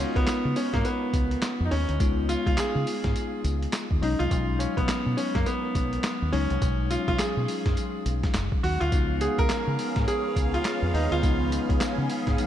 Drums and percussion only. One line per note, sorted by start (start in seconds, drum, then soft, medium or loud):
0.16 kick medium
0.16 closed hi-hat medium
0.27 snare loud
0.27 clap medium
0.27 closed hi-hat medium
0.27 tambourine loud
0.56 open hi-hat medium
0.56 tambourine medium
0.74 kick medium
0.74 snare medium
0.74 closed hi-hat medium
0.85 closed hi-hat medium
0.85 tambourine medium
1.13 kick loud
1.13 closed hi-hat medium
1.13 tambourine medium
1.31 closed hi-hat medium
1.42 snare loud
1.42 clap medium
1.42 closed hi-hat medium
1.42 tambourine medium
1.72 open hi-hat medium
1.89 closed hi-hat medium
2.00 kick loud
2.00 closed hi-hat medium
2.00 tambourine medium
2.29 closed hi-hat medium
2.29 tambourine medium
2.46 kick loud
2.46 closed hi-hat soft
2.58 snare loud
2.58 clap medium
2.58 closed hi-hat medium
2.58 tambourine loud
2.87 open hi-hat medium
2.87 tambourine medium
3.04 kick medium
3.04 snare medium
3.04 closed hi-hat medium
3.15 closed hi-hat medium
3.15 tambourine medium
3.44 closed hi-hat medium
3.44 tambourine medium
3.63 closed hi-hat soft
3.73 snare loud
3.73 clap medium
3.73 closed hi-hat medium
3.73 tambourine medium
3.91 kick medium
4.03 open hi-hat medium
4.20 closed hi-hat medium
4.31 kick loud
4.31 closed hi-hat medium
4.31 tambourine medium
4.60 closed hi-hat medium
4.60 tambourine medium
4.77 kick loud
4.77 closed hi-hat medium
4.89 snare loud
4.89 clap loud
4.89 closed hi-hat medium
4.89 tambourine loud
5.18 open hi-hat medium
5.18 tambourine medium
5.35 kick loud
5.35 snare medium
5.35 closed hi-hat medium
5.46 closed hi-hat medium
5.46 tambourine medium
5.75 kick loud
5.75 closed hi-hat medium
5.75 tambourine medium
5.93 closed hi-hat medium
6.04 snare loud
6.04 clap medium
6.04 closed hi-hat medium
6.04 tambourine medium
6.33 open hi-hat medium
6.50 closed hi-hat medium
6.62 kick loud
6.62 closed hi-hat medium
6.62 tambourine medium
6.91 closed hi-hat medium
6.91 tambourine medium
7.08 kick loud
7.08 closed hi-hat soft
7.19 snare loud
7.19 clap medium
7.19 closed hi-hat medium
7.19 tambourine loud
7.48 open hi-hat medium
7.48 tambourine medium
7.66 kick loud
7.66 snare medium
7.66 closed hi-hat medium
7.77 closed hi-hat medium
7.77 tambourine medium
8.06 closed hi-hat medium
8.06 tambourine medium
8.23 kick loud
8.23 snare medium
8.23 closed hi-hat medium
8.34 snare loud
8.34 clap medium
8.34 closed hi-hat medium
8.34 tambourine medium
8.52 kick loud
8.64 open hi-hat medium
8.81 closed hi-hat medium
8.92 kick loud
8.92 closed hi-hat medium
8.92 tambourine medium
9.21 closed hi-hat medium
9.21 tambourine medium
9.38 kick loud
9.38 closed hi-hat medium
9.49 snare loud
9.49 clap medium
9.49 closed hi-hat medium
9.49 tambourine medium
9.79 open hi-hat medium
9.79 tambourine medium
9.96 kick medium
9.96 snare medium
9.96 closed hi-hat medium
10.08 closed hi-hat medium
10.08 tambourine medium
10.36 kick medium
10.36 closed hi-hat medium
10.36 tambourine medium
10.54 closed hi-hat medium
10.65 snare loud
10.65 clap medium
10.65 closed hi-hat medium
10.65 tambourine medium
10.95 open hi-hat medium
11.12 closed hi-hat medium
11.23 kick loud
11.23 closed hi-hat medium
11.23 tambourine medium
11.52 closed hi-hat medium
11.52 tambourine medium
11.69 kick medium
11.69 closed hi-hat medium
11.81 snare loud
11.81 clap loud
11.81 closed hi-hat medium
11.81 tambourine loud
12.10 open hi-hat medium
12.10 tambourine medium
12.27 kick loud
12.27 snare medium
12.27 closed hi-hat medium
12.38 closed hi-hat medium
12.38 tambourine medium